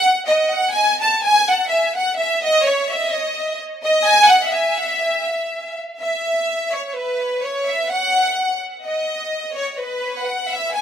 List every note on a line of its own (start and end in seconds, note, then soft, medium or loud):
0.00 0.17 F#5 loud
0.27 0.54 D#5 medium
0.52 0.77 F#5 loud
0.73 1.00 G#5 loud
1.01 1.23 A5 medium
1.23 1.49 G#5 loud
1.48 1.72 F#5 medium
1.70 1.96 E5 medium
1.96 2.17 F#5 medium
2.17 2.43 E5 medium
2.42 2.64 D#5 loud
2.66 2.92 C#5 medium
2.92 3.13 E5 medium
3.12 3.59 D#5 medium
3.84 4.05 D#5 loud
4.05 4.32 G#5 loud
4.29 4.53 F#5 loud
4.50 5.75 E5 medium
6.00 6.69 E5 medium
6.72 6.85 C#5 medium
6.87 6.94 C#5 medium
6.95 7.42 B4 medium
7.45 7.69 C#5 medium
7.68 7.89 E5 medium
7.91 8.59 F#5 medium
8.84 9.52 D#5 medium
9.56 9.70 C#5 medium
9.72 9.77 C#5 medium
9.78 10.25 B4 medium
10.23 10.50 F#5 medium
10.52 10.72 E5 medium
10.74 10.82 G#5 medium